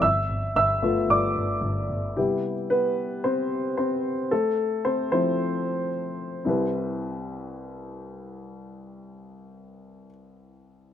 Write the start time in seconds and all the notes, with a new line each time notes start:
0.02 G1 E5 E6
0.29 G1
0.56 G1 E5 E6
0.82 G1 A3 B3 F4
1.09 G1 D5 D6
1.36 G1
1.62 G1
1.90 G1
2.17 C3 G3 B3 E4 G4
2.70 B3 B4
3.24 C4 C5
3.77 C4 C5
4.31 A3 A4
4.85 C4 C5
5.12 F3 A3 C4 E4 C5
6.45 C2 C4 E4 G4
6.49 B4